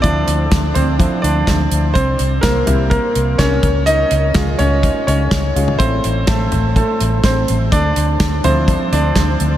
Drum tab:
HH |x-x-x-x-x-x-x-x-|x-x-x-x-x-x-x-x-|x-x-x-x-x-x-x-x-|x-x-x-x-x-x-x-x-|
SD |----o-------o---|----o-------o---|----o-------o---|----o-------o---|
FT |------o---------|------o---------|------o--------o|------o---------|
BD |o---o---o---o---|o---o---o---o-o-|----o---o---o---|o---o---o---o---|

HH |x-x-x-x-x-x-x-x-|
SD |----o-------o---|
FT |------o---------|
BD |o---o---o---o---|